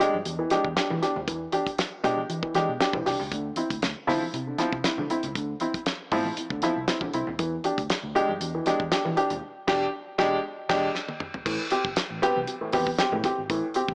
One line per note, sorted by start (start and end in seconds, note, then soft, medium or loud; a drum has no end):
0.00 0.14 G#3 medium
0.00 0.14 D4 medium
0.00 0.14 G4 medium
0.00 snare soft
0.00 closed hi-hat medium
0.00 muted conga soft
0.00 low conga medium
0.14 0.22 G2 medium
0.14 high conga medium
0.25 0.44 E2 medium
0.25 0.31 D4 soft
0.25 0.31 G4 soft
0.25 closed hi-hat medium
0.39 0.52 E3 medium
0.50 0.65 G#3 medium
0.50 0.65 D4 medium
0.50 0.65 G4 medium
0.50 snare soft
0.50 closed hi-hat medium
0.50 high conga medium
0.65 0.73 E2 medium
0.65 kick medium
0.76 0.90 D4 medium
0.76 0.91 G4 medium
0.76 snare loud
0.76 closed hi-hat medium
0.76 muted conga soft
0.90 1.03 E3 medium
0.90 0.99 E3 medium
0.90 high conga medium
0.90 low conga medium
1.02 1.16 D4 medium
1.02 1.16 G4 medium
1.02 snare soft
1.02 closed hi-hat medium
1.02 muted conga soft
1.16 1.28 D#2 medium
1.16 low conga medium
1.28 1.46 E2 loud
1.28 1.42 E3 medium
1.28 kick loud
1.28 closed hi-hat medium
1.52 1.67 D4 medium
1.52 1.67 G4 medium
1.52 closed hi-hat medium
1.52 high conga medium
1.67 muted fingered electric bass stroke soft
1.67 kick medium
1.67 closed hi-hat medium
1.78 snare loud
1.78 closed hi-hat loud
2.03 2.23 B2 medium
2.03 2.18 G#3 medium
2.03 2.18 D4 medium
2.03 2.18 G4 medium
2.03 kick medium
2.03 snare soft
2.03 closed hi-hat medium
2.03 low conga medium
2.17 high conga medium
2.29 2.39 E3 medium
2.29 2.35 D4 soft
2.29 2.35 G4 soft
2.29 closed hi-hat medium
2.43 2.56 E3 medium
2.43 kick loud
2.54 2.65 E3 medium
2.54 2.69 G#3 medium
2.54 2.69 D4 medium
2.54 2.69 G4 medium
2.54 snare soft
2.54 closed hi-hat medium
2.54 high conga medium
2.68 2.77 B2 medium
2.80 2.95 D4 medium
2.80 2.95 G4 medium
2.80 snare loud
2.80 closed hi-hat medium
2.80 muted conga soft
2.93 3.02 B1 medium
2.93 3.07 E3 medium
2.93 kick loud
2.93 high conga medium
2.93 low conga medium
3.06 3.16 C2 medium
3.06 3.20 D4 medium
3.06 3.20 G4 medium
3.06 snare soft
3.06 open hi-hat medium
3.20 3.29 C#2 medium
3.20 low conga medium
3.31 3.50 D2 loud
3.31 3.46 D3 medium
3.31 kick loud
3.31 closed hi-hat medium
3.56 3.71 C4 medium
3.56 3.71 E4 medium
3.56 closed hi-hat medium
3.56 high conga soft
3.70 3.79 D2 medium
3.70 kick medium
3.70 closed hi-hat medium
3.82 3.93 D2 medium
3.82 snare loud
3.82 closed hi-hat medium
4.07 4.18 D3 medium
4.07 4.22 F3 medium
4.07 4.22 C4 medium
4.07 4.22 E4 medium
4.07 snare soft
4.07 open hi-hat medium
4.07 muted conga soft
4.07 low conga medium
4.21 high conga medium
4.33 4.52 C3 loud
4.33 4.39 C4 soft
4.33 4.39 E4 soft
4.33 closed hi-hat medium
4.33 muted conga soft
4.47 4.60 D3 medium
4.58 4.73 F3 medium
4.58 4.73 C4 medium
4.58 4.73 E4 medium
4.58 snare soft
4.58 closed hi-hat medium
4.58 muted conga soft
4.58 high conga medium
4.73 4.81 C3 medium
4.73 kick medium
4.84 4.98 C4 medium
4.84 4.99 E4 medium
4.84 snare loud
4.84 closed hi-hat loud
4.98 5.11 D3 soft
4.98 5.07 D3 medium
4.98 high conga medium
4.98 low conga medium
5.10 5.24 C4 medium
5.10 5.24 E4 medium
5.10 closed hi-hat medium
5.23 5.32 C#2 medium
5.23 closed hi-hat medium
5.23 low conga medium
5.35 5.54 D2 medium
5.35 5.50 D3 medium
5.35 kick loud
5.35 closed hi-hat medium
5.35 muted conga soft
5.60 5.75 C4 medium
5.60 5.75 E4 medium
5.60 closed hi-hat medium
5.60 high conga medium
5.74 muted fingered electric bass stroke soft
5.74 kick loud
5.74 closed hi-hat soft
5.86 snare loud
5.86 closed hi-hat loud
6.12 6.30 A2 medium
6.12 6.26 F3 medium
6.12 6.26 C4 medium
6.12 6.26 E4 medium
6.12 kick medium
6.12 open hi-hat medium
6.12 low conga medium
6.25 high conga medium
6.37 6.43 C4 soft
6.37 6.43 E4 soft
6.37 muted fingered electric bass stroke soft
6.37 closed hi-hat medium
6.50 6.59 D2 medium
6.50 6.63 D3 medium
6.50 kick medium
6.62 6.77 F3 medium
6.62 6.77 C4 medium
6.62 6.77 E4 medium
6.62 snare soft
6.62 closed hi-hat medium
6.62 muted conga soft
6.62 high conga medium
6.77 6.85 C2 loud
6.88 7.02 C4 medium
6.88 7.02 E4 medium
6.88 snare loud
6.88 closed hi-hat loud
7.01 7.14 D3 medium
7.01 kick medium
7.01 high conga medium
7.01 low conga medium
7.13 7.23 C2 medium
7.13 7.28 C4 medium
7.13 7.28 E4 medium
7.13 closed hi-hat medium
7.13 muted conga soft
7.27 7.36 D#2 medium
7.27 low conga medium
7.39 7.57 E2 loud
7.39 7.53 E3 medium
7.39 kick loud
7.39 closed hi-hat medium
7.39 muted conga soft
7.64 7.78 D4 medium
7.64 7.79 G4 medium
7.64 closed hi-hat medium
7.64 muted conga soft
7.64 high conga medium
7.78 7.87 D2 medium
7.78 kick medium
7.78 closed hi-hat medium
7.90 snare loud
7.90 closed hi-hat loud
8.03 8.12 D2 loud
8.15 8.29 G#3 medium
8.15 8.29 D4 medium
8.15 8.30 G4 loud
8.15 closed hi-hat medium
8.15 muted conga soft
8.15 low conga medium
8.29 8.38 G2 medium
8.29 high conga medium
8.41 8.59 E2 loud
8.41 8.46 D4 soft
8.41 8.46 G4 soft
8.41 closed hi-hat medium
8.41 muted conga soft
8.55 8.67 E3 medium
8.66 8.80 G#3 medium
8.66 8.80 D4 medium
8.66 8.81 G4 medium
8.66 snare soft
8.66 closed hi-hat medium
8.66 muted conga soft
8.66 high conga medium
8.80 8.89 E2 medium
8.80 kick medium
8.92 9.06 D4 medium
8.92 9.06 G4 medium
8.92 snare loud
8.92 closed hi-hat loud
8.92 muted conga soft
9.05 9.18 E3 medium
9.05 9.14 E3 medium
9.05 high conga medium
9.05 low conga medium
9.16 9.31 D4 medium
9.16 9.31 G4 medium
9.16 closed hi-hat medium
9.16 muted conga soft
9.30 9.39 D#2 medium
9.30 closed hi-hat medium
9.30 low conga medium
9.67 9.86 E1 loud
9.67 9.85 D4 medium
9.67 9.86 G4 loud
9.67 kick loud
9.67 snare loud
9.67 crash medium
10.18 10.37 E1 loud
10.18 10.36 G#3 loud
10.18 10.36 D4 loud
10.18 10.36 G4 loud
10.18 kick medium
10.18 snare loud
10.69 10.87 E1 loud
10.69 10.87 G#3 medium
10.69 10.87 D4 loud
10.69 10.87 G4 loud
10.69 kick loud
10.69 snare loud
10.69 crash medium
10.95 snare soft
11.09 high tom medium
11.20 mid tom loud
11.34 floor tom medium
11.45 11.56 A1 loud
11.45 11.60 A2 medium
11.45 11.60 E3 medium
11.45 kick loud
11.45 crash loud
11.45 muted conga soft
11.70 11.85 C4 medium
11.70 11.86 G4 medium
11.70 closed hi-hat medium
11.70 muted conga soft
11.85 11.94 G1 medium
11.85 kick loud
11.96 snare loud
11.96 closed hi-hat loud
12.10 12.19 A1 medium
12.22 12.36 B3 medium
12.22 12.37 C4 medium
12.22 12.37 G4 loud
12.22 snare soft
12.22 closed hi-hat medium
12.22 muted conga soft
12.22 low conga medium
12.36 12.45 C2 medium
12.36 high conga medium
12.47 12.53 C4 soft
12.47 12.53 G4 soft
12.47 closed hi-hat medium
12.61 12.74 A2 medium
12.61 12.74 E3 medium
12.61 muted fingered electric bass stroke soft
12.72 12.92 E2 medium
12.72 12.87 B3 medium
12.72 12.87 C4 medium
12.72 12.87 G4 medium
12.72 kick medium
12.72 snare soft
12.72 open hi-hat medium
12.72 muted conga soft
12.72 high conga medium
12.87 kick medium
12.98 13.13 C4 medium
12.98 13.13 G4 medium
12.98 snare loud
12.98 closed hi-hat medium
12.98 muted conga soft
13.12 13.21 A2 loud
13.12 13.25 A2 soft
13.12 13.25 E3 medium
13.12 high conga medium
13.12 low conga medium
13.24 13.38 C4 medium
13.24 13.39 G4 medium
13.24 kick loud
13.24 snare soft
13.24 closed hi-hat medium
13.24 muted conga soft
13.38 13.47 G#1 medium
13.50 13.60 A1 loud
13.50 13.64 A2 medium
13.50 13.64 E3 medium
13.50 kick loud
13.50 closed hi-hat medium
13.74 13.89 C4 medium
13.74 13.90 G4 medium
13.74 closed hi-hat medium
13.74 muted conga soft
13.88 13.94 A1 medium
13.88 kick loud